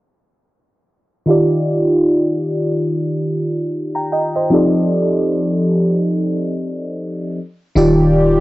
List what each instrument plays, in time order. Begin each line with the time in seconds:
1.26 fm electric piano D#3 D#4 F4 G4
1.31 fm electric piano D5
3.95 fm electric piano G5 A#5
4.12 fm electric piano D#5 G5
4.35 fm electric piano C5 D#5
4.50 fm electric piano F3 C4 D#4 G4 A4
4.54 fm electric piano D5
7.76 808-style bass D#1, fm electric piano D#3 D#4 F4 G4 D5, analog synth pad D#3 F4 G4 D5